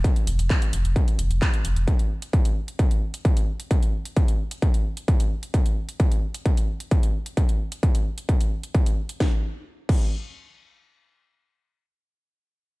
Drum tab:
CC |----------------|----------------|----------------|----------------|
HH |xxoxxxoxxxoxxxox|xx-xxx-xxx-xxx-x|xx-xxx-xxx-xxx-x|xx-xxx-xxx-xxx-x|
CP |----x-------x---|----------------|----------------|----------------|
SD |----------------|----------------|----------------|----------------|
BD |o---o---o---o---|o---o---o---o---|o---o---o---o---|o---o---o---o---|

CC |----------------|------x---------|----------------|
HH |xx-xxx-xxx-xxx-x|----------------|----------------|
CP |----------------|----------------|----------------|
SD |----------------|o---------------|----------------|
BD |o---o---o---o---|o-----o---------|----------------|